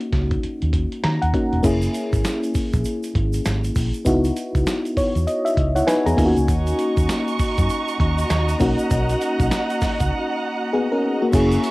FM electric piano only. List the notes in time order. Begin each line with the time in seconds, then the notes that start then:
Already playing: A#3 C#4 D#4 F#4
1.04 A#5
1.22 F#5
1.33 A#3 C#4 D#4 F#4
1.63 A#3 C#4 E4 G#4
4.05 B3 D#4 E4 F#4
4.97 C#5
5.27 D#5
5.45 E5
5.75 E4 C#5 F#5
5.87 D#4 B4 G#5
6.06 B3 G#4 A#5
6.17 A#3 C#4 D#4 F4 G#5
6.25 F#4
8.60 A#3 C#4 D#4 F#4
10.73 B3 G#4
10.92 C#4 A#4
11.22 A#3 F#4
11.32 A#3 C#4 E4 G#4